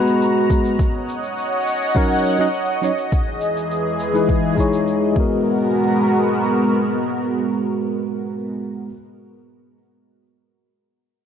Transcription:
0.00 0.76 G#3 medium
0.00 0.76 B3 medium
0.00 0.77 B3 medium
0.00 0.76 F#4 medium
0.00 0.78 F#4 medium
0.00 0.79 B4 medium
0.00 0.76 A#5 medium
0.07 shaker medium
0.22 shaker soft
0.50 kick medium
0.50 shaker medium
0.65 shaker medium
0.79 3.10 C#5 medium
0.79 5.12 D#5 medium
0.79 3.10 F#5 medium
0.79 kick medium
0.79 shaker soft
1.09 shaker medium
1.23 shaker soft
1.38 shaker soft
1.67 shaker medium
1.82 shaker medium
1.95 2.36 F#3 medium
1.95 2.36 C#4 medium
1.95 2.37 D#4 medium
1.95 2.37 A#4 medium
1.95 kick loud
1.95 shaker soft
2.25 shaker medium
2.39 2.46 F#3 medium
2.39 2.47 C#4 medium
2.39 2.47 D#4 medium
2.39 2.47 D#5 medium
2.39 shaker soft
2.54 shaker soft
2.82 2.90 F#3 medium
2.82 2.90 C#4 medium
2.82 2.90 D#4 medium
2.82 2.91 C#5 medium
2.82 shaker medium
2.98 shaker medium
3.12 5.14 E3 medium
3.12 5.14 G#4 medium
3.12 kick medium
3.12 shaker soft
3.41 shaker medium
3.57 shaker soft
3.71 shaker soft
4.00 shaker medium
4.14 4.54 G#3 medium
4.14 4.54 D#4 medium
4.14 4.55 E4 medium
4.14 4.55 B4 medium
4.14 shaker soft
4.29 kick medium
4.29 shaker soft
4.55 5.11 G#3 medium
4.55 5.16 D#4 medium
4.55 5.16 E4 medium
4.55 kick medium
4.55 shaker medium
4.60 5.17 C#5 medium
4.73 shaker soft
4.88 shaker soft
5.12 8.89 G#3 medium
5.12 8.54 G#3 medium
5.12 8.91 B3 medium
5.12 8.54 B3 medium
5.12 8.54 F#4 medium
5.12 8.54 A#4 medium
5.12 kick loud
5.17 8.94 F#4 medium
5.17 8.96 A#4 medium

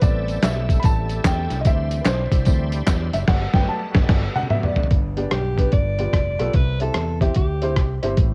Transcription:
0.01 0.37 A1 loud
0.01 1.61 G3 soft
0.01 1.62 A3 medium
0.01 1.61 B3 medium
0.01 1.61 C4 soft
0.01 1.62 E4 medium
0.01 1.62 G4 medium
0.01 1.62 A4 medium
0.01 0.44 D5 medium
0.01 kick loud
0.01 closed hi-hat medium
0.01 tambourine medium
0.28 closed hi-hat medium
0.28 tambourine medium
0.42 0.78 B1 medium
0.42 0.80 E5 medium
0.42 snare loud
0.42 clap medium
0.42 closed hi-hat medium
0.42 tambourine medium
0.69 kick medium
0.69 closed hi-hat medium
0.69 tambourine soft
0.80 0.84 B5 medium
0.80 closed hi-hat medium
0.84 1.19 A1 medium
0.84 1.26 A5 loud
0.84 kick loud
0.84 tambourine medium
1.09 closed hi-hat medium
1.09 tambourine soft
1.24 1.47 E2 medium
1.24 1.59 G5 loud
1.24 kick medium
1.24 snare loud
1.24 clap loud
1.24 closed hi-hat medium
1.24 tambourine loud
1.50 1.63 C2 medium
1.50 snare soft
1.50 closed hi-hat medium
1.50 tambourine medium
1.61 1.66 D#5 medium
1.61 closed hi-hat medium
1.65 2.00 D2 medium
1.65 1.96 E3 medium
1.65 3.25 G3 medium
1.65 1.96 G3 soft
1.65 1.96 C4 medium
1.65 3.25 D4 medium
1.65 3.25 E4 medium
1.65 3.25 C5 medium
1.65 2.03 E5 medium
1.65 kick loud
1.65 tambourine medium
1.91 closed hi-hat medium
1.91 tambourine medium
2.01 2.06 B4 soft
2.05 2.28 B1 medium
2.05 2.69 C5 medium
2.05 snare loud
2.05 clap medium
2.05 closed hi-hat medium
2.05 tambourine medium
2.32 2.44 C2 medium
2.32 kick medium
2.32 closed hi-hat medium
2.32 tambourine soft
2.45 2.81 D2 medium
2.45 2.70 E3 soft
2.45 2.70 G3 soft
2.45 2.70 C4 medium
2.45 kick loud
2.45 closed hi-hat medium
2.45 tambourine medium
2.72 closed hi-hat medium
2.72 tambourine soft
2.87 3.09 E2 medium
2.87 kick medium
2.87 snare loud
2.87 clap loud
2.87 closed hi-hat medium
2.87 tambourine loud
3.13 3.26 F#1 medium
3.13 3.19 E5 medium
3.13 snare soft
3.13 closed hi-hat medium
3.13 tambourine medium
3.27 3.46 G1 medium
3.27 4.87 G3 medium
3.27 4.87 B3 medium
3.27 4.88 F#4 medium
3.27 4.88 A4 medium
3.27 3.55 F#5 medium
3.27 kick loud
3.27 snare loud
3.27 crash medium
3.54 3.64 G1 medium
3.54 3.78 F#3 medium
3.54 3.78 A3 soft
3.54 3.78 B3 medium
3.54 3.69 G5 loud
3.54 kick loud
3.54 snare medium
3.69 3.93 A5 medium
3.95 4.05 G1 loud
3.95 kick loud
3.95 snare loud
4.09 4.27 G1 loud
4.09 kick loud
4.09 snare loud
4.09 crash medium
4.36 4.41 F#5 loud
4.36 high tom medium
4.43 high tom medium
4.50 4.74 F#3 medium
4.50 4.74 A3 medium
4.50 4.74 B3 medium
4.50 4.56 E5 loud
4.50 mid tom medium
4.63 4.89 D5 medium
4.63 mid tom medium
4.76 floor tom medium
4.83 floor tom medium
4.91 5.26 G1 medium
4.91 5.54 G2 medium
4.91 kick loud
4.91 closed hi-hat medium
5.17 5.27 B3 medium
5.17 5.28 D4 medium
5.17 5.28 G4 medium
5.17 5.28 D5 medium
5.17 closed hi-hat medium
5.31 5.66 B1 medium
5.31 5.70 G4 medium
5.31 cross-stick medium
5.31 closed hi-hat medium
5.57 5.68 B3 medium
5.57 5.68 D4 medium
5.57 5.68 G4 medium
5.57 5.69 B4 medium
5.57 kick medium
5.57 closed hi-hat medium
5.72 6.07 G1 medium
5.72 6.35 G2 soft
5.72 6.56 D5 medium
5.72 kick medium
5.72 closed hi-hat medium
5.98 6.09 B3 medium
5.98 6.10 F4 medium
5.98 6.10 G4 medium
5.98 6.10 D5 medium
5.98 closed hi-hat medium
6.13 6.36 F1 medium
6.13 kick medium
6.13 cross-stick medium
6.13 closed hi-hat medium
6.39 6.52 B1 medium
6.39 6.50 B3 medium
6.39 6.50 F4 medium
6.39 6.50 G4 medium
6.39 6.51 A4 medium
6.39 cross-stick soft
6.39 closed hi-hat medium
6.53 6.89 C2 medium
6.53 7.17 C3 soft
6.53 6.81 B4 medium
6.53 kick loud
6.53 closed hi-hat medium
6.80 6.91 C4 medium
6.80 6.91 E4 medium
6.80 6.91 G4 medium
6.80 7.19 A4 medium
6.80 6.92 E5 medium
6.80 closed hi-hat medium
6.94 7.30 E2 medium
6.94 cross-stick medium
6.94 closed hi-hat medium
7.21 7.32 C4 medium
7.21 7.32 E4 medium
7.21 7.32 G4 medium
7.21 7.35 G4 medium
7.21 7.32 E5 medium
7.21 kick medium
7.21 closed hi-hat medium
7.34 7.76 D2 medium
7.34 7.99 G4 medium
7.34 kick medium
7.34 closed hi-hat medium
7.62 7.73 C4 medium
7.62 7.73 E4 medium
7.62 7.73 G4 medium
7.62 7.73 C5 medium
7.62 closed hi-hat medium
7.76 7.99 C2 medium
7.76 kick medium
7.76 cross-stick loud
7.76 closed hi-hat medium
8.03 8.15 G1 medium
8.03 8.13 C4 medium
8.03 8.14 E4 medium
8.03 8.14 G4 medium
8.03 8.14 C5 medium
8.03 cross-stick soft
8.03 closed hi-hat medium
8.17 8.34 A1 medium
8.17 8.34 A2 medium
8.17 kick loud
8.17 closed hi-hat medium

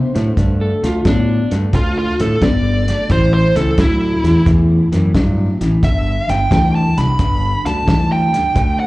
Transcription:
0.00 0.10 D3 medium
0.00 0.10 B3 medium
0.00 0.56 C5 medium
0.15 0.31 A2 medium
0.15 0.35 D3 medium
0.15 0.35 A3 medium
0.15 snare soft
0.15 closed hi-hat medium
0.37 0.70 G2 loud
0.37 0.79 D3 medium
0.37 0.79 A3 medium
0.37 kick medium
0.37 snare soft
0.37 closed hi-hat medium
0.61 0.83 A4 medium
0.83 0.99 D2 medium
0.83 1.03 D3 medium
0.83 1.03 A3 medium
0.83 1.06 F4 medium
0.83 snare soft
0.83 closed hi-hat medium
1.05 1.38 A2 medium
1.05 1.47 D3 medium
1.05 1.47 B3 medium
1.05 1.51 D4 loud
1.05 kick medium
1.05 snare loud
1.05 closed hi-hat medium
1.51 1.67 G2 medium
1.51 1.71 D3 medium
1.51 1.72 A3 medium
1.51 snare soft
1.51 closed hi-hat medium
1.73 2.07 D2 medium
1.73 2.15 D3 medium
1.73 2.15 A3 loud
1.73 1.97 F4 medium
1.73 kick medium
1.73 snare soft
1.73 closed hi-hat medium
1.98 2.19 F4 medium
2.20 2.36 A2 medium
2.20 2.40 D3 medium
2.20 2.40 A3 medium
2.20 2.42 A4 medium
2.20 snare soft
2.20 closed hi-hat medium
2.42 2.91 G1 medium
2.42 2.84 D3 medium
2.42 2.84 B3 loud
2.42 3.08 D5 medium
2.42 kick medium
2.42 snare loud
2.42 closed hi-hat medium
2.88 3.08 D3 medium
2.88 3.08 A3 medium
2.88 snare soft
2.88 closed hi-hat medium
3.10 3.43 A1 loud
3.10 3.52 A2 medium
3.10 3.52 E3 loud
3.10 3.33 C5 medium
3.10 kick medium
3.10 snare soft
3.10 closed hi-hat medium
3.34 3.55 C5 medium
3.56 3.72 C#2 medium
3.56 3.76 A2 medium
3.56 3.76 E3 medium
3.56 3.78 A4 medium
3.56 snare soft
3.56 closed hi-hat medium
3.78 4.11 D2 medium
3.78 4.20 A2 medium
3.78 4.20 F#3 medium
3.78 4.45 E4 loud
3.78 kick medium
3.78 snare loud
3.78 closed hi-hat medium
4.24 4.40 E2 medium
4.24 4.44 A2 medium
4.24 4.44 E3 medium
4.24 snare soft
4.24 closed hi-hat medium
4.46 4.80 E2 medium
4.46 4.88 A2 medium
4.46 4.88 E3 medium
4.46 kick medium
4.46 snare soft
4.46 closed hi-hat medium
4.92 5.08 F#2 medium
4.92 5.12 A2 medium
4.92 5.12 E3 medium
4.92 snare soft
4.92 closed hi-hat medium
5.15 5.48 G2 medium
5.15 5.56 A2 medium
5.15 5.57 F#3 medium
5.15 kick medium
5.15 snare loud
5.15 closed hi-hat medium
5.61 5.76 A1 medium
5.61 5.81 A2 medium
5.61 5.81 E3 medium
5.61 snare soft
5.61 closed hi-hat medium
5.82 6.16 G1 loud
5.82 6.24 G2 medium
5.82 6.25 D3 medium
5.82 6.28 E5 medium
5.82 kick medium
5.82 snare soft
5.82 closed hi-hat medium
6.28 6.45 G1 medium
6.28 6.48 G2 medium
6.28 6.49 D3 medium
6.28 6.73 G5 medium
6.28 snare soft
6.28 closed hi-hat medium
6.51 6.84 D2 medium
6.51 6.93 G2 medium
6.51 6.93 E3 medium
6.51 kick medium
6.51 snare loud
6.51 closed hi-hat medium
6.75 6.97 A5 medium
6.97 7.13 C2 medium
6.97 7.17 G2 medium
6.97 7.17 D3 medium
6.97 7.63 B5 medium
6.97 snare soft
6.97 closed hi-hat medium
7.19 7.53 G1 medium
7.19 7.61 G2 medium
7.19 7.61 D3 loud
7.19 kick medium
7.19 snare soft
7.19 closed hi-hat medium
7.65 7.81 D2 medium
7.65 7.85 G2 medium
7.65 7.85 D3 medium
7.65 8.10 A5 medium
7.65 snare soft
7.65 closed hi-hat medium
7.86 8.36 D2 medium
7.86 8.29 G2 medium
7.86 8.29 E3 medium
7.86 kick medium
7.86 snare loud
7.86 closed hi-hat medium
8.12 8.77 G5 medium
8.33 8.53 G2 medium
8.33 8.53 D3 medium
8.33 snare soft
8.33 closed hi-hat medium
8.55 8.87 D2 loud
8.55 8.87 D3 medium
8.55 8.87 A3 medium
8.55 kick medium
8.55 snare soft
8.55 closed hi-hat medium
8.80 8.87 F#5 medium

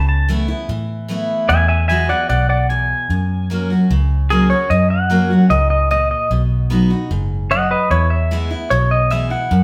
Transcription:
0.00 0.52 C#2 medium
0.00 0.65 C#3 medium
0.09 0.28 A5 medium
0.28 0.48 E3 medium
0.28 0.49 A3 medium
0.28 0.49 B3 medium
0.28 0.47 E4 loud
0.48 0.69 B3 soft
0.48 0.68 E4 medium
0.69 1.32 A2 medium
0.69 1.07 E3 medium
1.08 1.47 E3 medium
1.08 1.48 A3 medium
1.08 1.48 B3 medium
1.08 1.48 E4 medium
1.49 2.12 E2 loud
1.49 2.26 E2 medium
1.49 1.67 E5 medium
1.49 1.68 G#5 medium
1.68 1.87 E5 medium
1.68 1.87 G#5 medium
1.88 2.09 E3 medium
1.88 2.09 G#3 medium
1.88 2.10 B3 medium
1.88 2.08 F#4 loud
1.88 2.08 E5 medium
1.88 2.09 G#5 medium
2.09 2.30 B3 soft
2.09 2.29 F#4 medium
2.09 2.28 D5 medium
2.09 2.29 F#5 loud
2.29 2.92 B1 medium
2.29 3.06 B2 medium
2.29 2.48 D5 medium
2.29 2.49 F#5 medium
2.49 2.68 D5 medium
2.49 2.69 F#5 medium
2.70 3.08 E2 medium
2.70 3.47 G#5 medium
3.10 3.72 F#2 loud
3.10 3.86 F#2 medium
3.50 3.69 F#3 medium
3.50 3.70 A#3 medium
3.50 3.70 C#4 medium
3.50 3.69 F#4 medium
3.70 3.90 C#4 soft
3.70 3.89 F#4 medium
3.90 4.53 C#2 medium
3.90 4.66 C#3 medium
4.30 4.49 F#3 medium
4.30 4.50 A#3 medium
4.30 4.50 C#4 medium
4.30 4.49 F#4 medium
4.30 4.50 G#4 medium
4.50 4.71 C#4 soft
4.50 4.70 F#4 medium
4.50 4.70 C#5 medium
4.70 5.33 F#2 medium
4.70 5.47 F#2 medium
4.70 4.90 D#5 medium
4.90 5.49 F#5 medium
5.10 5.29 F#3 medium
5.10 5.30 A#3 loud
5.10 5.30 C#4 medium
5.10 5.29 F#4 medium
5.30 5.51 C#4 soft
5.30 5.50 F#4 medium
5.50 6.13 C#2 medium
5.50 5.88 G#2 medium
5.50 5.69 D#5 medium
5.70 5.90 D#5 medium
5.91 6.29 A#2 medium
5.91 6.10 D#5 loud
6.11 6.30 D#5 loud
6.31 6.93 B1 loud
6.31 7.07 B2 medium
6.70 6.89 F#3 medium
6.70 6.90 B3 loud
6.70 6.90 D#4 medium
6.70 6.89 F#4 loud
6.90 7.11 D#4 soft
6.90 7.10 F#4 medium
7.11 7.73 F#1 loud
7.11 7.49 G#2 medium
7.51 7.89 F#2 medium
7.51 7.70 D#5 medium
7.51 7.71 F#5 medium
7.71 7.89 B4 medium
7.71 7.91 D#5 medium
7.90 8.53 E2 loud
7.90 8.67 E2 medium
7.90 8.09 E4 medium
7.90 8.10 C#5 loud
8.10 8.49 E5 loud
8.31 8.50 E3 medium
8.31 8.50 G#3 medium
8.31 8.51 B3 medium
8.31 8.49 E4 loud
8.50 8.71 B3 medium
8.50 8.70 E4 medium
8.70 9.34 B1 medium
8.70 9.47 B2 loud
8.70 8.90 C#5 loud
8.91 9.11 D#5 medium
9.11 9.30 E3 medium
9.11 9.31 G#3 medium
9.11 9.31 B3 medium
9.11 9.29 E4 medium
9.11 9.31 E5 medium
9.30 9.51 B3 soft
9.30 9.50 E4 medium
9.30 9.64 F#5 medium
9.51 9.64 F#2 medium
9.51 9.64 F#2 loud

